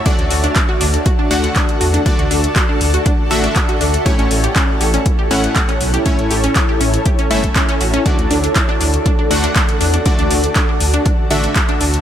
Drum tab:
HH |xxoxx-oxx-oxxxox|xxoxx-oxx-oxxxox|xxoxx-oxx-oxxxox|xxoxx-oxxxoxxxox|
CP |----x-------x---|----x-------x---|----x-------x---|----x-------x---|
BD |o---o---o---o---|o---o---o---o---|o---o---o---o---|o---o---o--oo---|

HH |xxoxx-oxx-oxxxox|xxoxx-oxx-oxxxox|
CP |----x-------x---|----x-------x---|
BD |o---o---o---o---|o---o---o---o---|